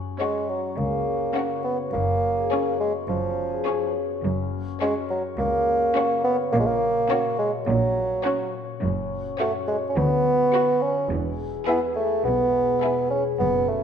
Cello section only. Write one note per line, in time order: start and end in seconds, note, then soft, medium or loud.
0.77 1.23 C#2 soft
1.93 2.38 F#2 soft
3.08 3.54 F#2 soft
4.23 4.69 F#2 medium
5.38 5.84 C#2 medium
6.53 6.98 A#2 medium
7.67 8.13 A#2 medium
8.82 9.27 F#2 medium
9.96 10.41 D2 medium
11.11 11.56 E2 medium
12.25 12.70 B2 medium
13.40 13.83 F#2 medium